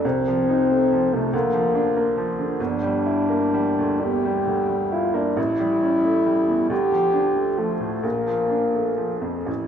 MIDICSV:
0, 0, Header, 1, 3, 480
1, 0, Start_track
1, 0, Tempo, 852273
1, 21, Time_signature, 6, 3, 24, 8
1, 1460, Tempo, 943396
1, 2420, Tempo, 892857
1, 4340, Tempo, 960000
1, 5152, End_track
2, 0, Start_track
2, 0, Title_t, "French horn"
2, 0, Program_c, 0, 60
2, 33, Note_on_c, 0, 60, 75
2, 640, Note_on_c, 0, 57, 62
2, 648, Note_off_c, 0, 60, 0
2, 754, Note_on_c, 0, 58, 72
2, 763, Note_off_c, 0, 57, 0
2, 1222, Note_off_c, 0, 58, 0
2, 1458, Note_on_c, 0, 62, 79
2, 2182, Note_on_c, 0, 67, 72
2, 2190, Note_off_c, 0, 62, 0
2, 2660, Note_on_c, 0, 65, 68
2, 2668, Note_off_c, 0, 67, 0
2, 2779, Note_on_c, 0, 62, 61
2, 2787, Note_off_c, 0, 65, 0
2, 2903, Note_on_c, 0, 64, 81
2, 2911, Note_off_c, 0, 62, 0
2, 3616, Note_off_c, 0, 64, 0
2, 3619, Note_on_c, 0, 67, 85
2, 4092, Note_on_c, 0, 57, 57
2, 4100, Note_off_c, 0, 67, 0
2, 4336, Note_on_c, 0, 58, 65
2, 4344, Note_off_c, 0, 57, 0
2, 4902, Note_off_c, 0, 58, 0
2, 5050, Note_on_c, 0, 64, 67
2, 5152, Note_off_c, 0, 64, 0
2, 5152, End_track
3, 0, Start_track
3, 0, Title_t, "Grand piano"
3, 0, Program_c, 1, 0
3, 0, Control_c, 1, 64, 127
3, 27, Note_on_c, 1, 36, 51
3, 30, Control_c, 1, 64, 0
3, 128, Control_c, 1, 64, 127
3, 154, Note_on_c, 1, 53, 44
3, 277, Note_on_c, 1, 63, 45
3, 345, Note_off_c, 1, 53, 0
3, 401, Note_on_c, 1, 57, 38
3, 466, Note_off_c, 1, 63, 0
3, 519, Note_on_c, 1, 53, 46
3, 588, Note_off_c, 1, 57, 0
3, 638, Note_on_c, 1, 48, 46
3, 707, Note_off_c, 1, 53, 0
3, 730, Note_off_c, 1, 36, 0
3, 751, Note_on_c, 1, 38, 58
3, 753, Note_off_c, 1, 48, 0
3, 758, Control_c, 1, 64, 0
3, 835, Control_c, 1, 64, 127
3, 868, Note_on_c, 1, 53, 42
3, 987, Note_on_c, 1, 62, 47
3, 1055, Note_off_c, 1, 53, 0
3, 1107, Note_on_c, 1, 58, 41
3, 1173, Note_off_c, 1, 62, 0
3, 1224, Note_on_c, 1, 53, 44
3, 1293, Note_off_c, 1, 58, 0
3, 1346, Note_on_c, 1, 50, 44
3, 1413, Note_off_c, 1, 53, 0
3, 1439, Note_off_c, 1, 38, 0
3, 1464, Note_off_c, 1, 50, 0
3, 1466, Note_on_c, 1, 31, 55
3, 1468, Control_c, 1, 64, 0
3, 1548, Control_c, 1, 64, 127
3, 1579, Note_on_c, 1, 55, 46
3, 1698, Note_on_c, 1, 64, 46
3, 1768, Note_off_c, 1, 55, 0
3, 1818, Note_on_c, 1, 58, 40
3, 1893, Note_off_c, 1, 64, 0
3, 1942, Note_on_c, 1, 55, 47
3, 2017, Note_off_c, 1, 58, 0
3, 2069, Note_on_c, 1, 38, 42
3, 2140, Note_off_c, 1, 55, 0
3, 2189, Note_on_c, 1, 40, 38
3, 2260, Note_off_c, 1, 38, 0
3, 2305, Note_on_c, 1, 55, 44
3, 2306, Note_off_c, 1, 40, 0
3, 2415, Note_on_c, 1, 38, 42
3, 2491, Note_off_c, 1, 55, 0
3, 2536, Note_on_c, 1, 55, 38
3, 2608, Note_off_c, 1, 38, 0
3, 2658, Note_on_c, 1, 64, 44
3, 2729, Note_off_c, 1, 55, 0
3, 2776, Note_on_c, 1, 58, 43
3, 2851, Note_off_c, 1, 64, 0
3, 2881, Note_off_c, 1, 31, 0
3, 2897, Note_on_c, 1, 33, 55
3, 2898, Note_off_c, 1, 58, 0
3, 2910, Control_c, 1, 64, 0
3, 2986, Control_c, 1, 64, 127
3, 3020, Note_on_c, 1, 55, 43
3, 3140, Note_on_c, 1, 61, 43
3, 3214, Note_off_c, 1, 55, 0
3, 3259, Note_on_c, 1, 57, 39
3, 3333, Note_off_c, 1, 61, 0
3, 3376, Note_on_c, 1, 55, 41
3, 3451, Note_off_c, 1, 57, 0
3, 3491, Note_on_c, 1, 40, 37
3, 3568, Note_off_c, 1, 55, 0
3, 3595, Note_off_c, 1, 33, 0
3, 3613, Note_off_c, 1, 40, 0
3, 3613, Note_on_c, 1, 38, 52
3, 3627, Control_c, 1, 64, 0
3, 3729, Control_c, 1, 64, 127
3, 3732, Note_on_c, 1, 53, 38
3, 3847, Note_on_c, 1, 62, 39
3, 3922, Note_off_c, 1, 53, 0
3, 3968, Note_on_c, 1, 57, 36
3, 4040, Note_off_c, 1, 62, 0
3, 4083, Note_on_c, 1, 53, 36
3, 4163, Note_off_c, 1, 57, 0
3, 4204, Note_on_c, 1, 45, 39
3, 4284, Note_off_c, 1, 53, 0
3, 4314, Note_off_c, 1, 38, 0
3, 4328, Note_on_c, 1, 34, 46
3, 4333, Note_off_c, 1, 45, 0
3, 4346, Control_c, 1, 64, 0
3, 4439, Control_c, 1, 64, 127
3, 4449, Note_on_c, 1, 53, 36
3, 4565, Note_on_c, 1, 62, 36
3, 4641, Note_off_c, 1, 53, 0
3, 4683, Note_on_c, 1, 57, 36
3, 4759, Note_off_c, 1, 62, 0
3, 4800, Note_on_c, 1, 53, 36
3, 4879, Note_off_c, 1, 57, 0
3, 4923, Note_on_c, 1, 41, 35
3, 5000, Note_off_c, 1, 53, 0
3, 5030, Note_off_c, 1, 34, 0
3, 5045, Note_on_c, 1, 33, 43
3, 5050, Note_off_c, 1, 41, 0
3, 5065, Control_c, 1, 64, 0
3, 5143, Control_c, 1, 64, 127
3, 5152, Note_off_c, 1, 33, 0
3, 5152, End_track
0, 0, End_of_file